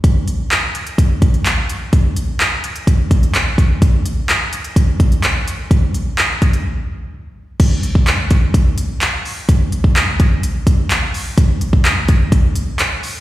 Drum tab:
CC |----------------|----------------|----------------|----------------|
HH |x-x-x-xxx-xxx-x-|x-x-x-xxx-xxx-x-|x-x-x-xxx-xxx-x-|x-x-x-xx--------|
CP |----x-------x---|----x-------x---|----x-------x---|----x-----------|
BD |o-------o-o-----|o-------o-o---o-|o-------o-o-----|o-----o---------|

CC |x---------------|----------------|----------------|
HH |x-x-x-x-x-x-x-o-|x-x-x-x-x-x-x-o-|x-x-x-x-x-x-x-o-|
CP |----x-------x---|----x-------x---|----x-------x---|
BD |o--o--o-o-------|o--o--o---o-----|o--o--o-o-------|